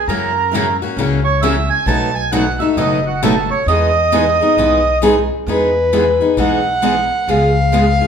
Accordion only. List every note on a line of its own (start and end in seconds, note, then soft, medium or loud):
0.08 0.77 A#4 medium
1.24 1.41 C#5 medium
1.42 1.69 E5 medium
1.70 1.86 G#5 medium
1.87 2.14 A5 loud
2.15 2.31 G#5 loud
2.32 2.60 F#5 medium
2.59 2.76 E5 medium
2.78 3.05 D#5 medium
3.07 3.22 F#4 medium
3.22 3.50 A4 medium
3.51 3.67 C#5 medium
3.68 4.99 D#5 loud